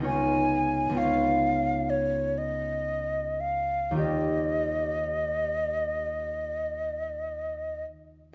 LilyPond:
<<
  \new Staff \with { instrumentName = "Flute" } { \time 4/4 \key ees \mixolydian \tempo 4 = 57 aes''4 f''4 des''8 ees''4 f''8 | ees''2.~ ees''8 r8 | }
  \new Staff \with { instrumentName = "Harp" } { \time 4/4 \key ees \mixolydian <des, ces' ees' f' des''>4 <des, ces' ees' f' des''>2. | <ees, bes f' g' d''>1 | }
>>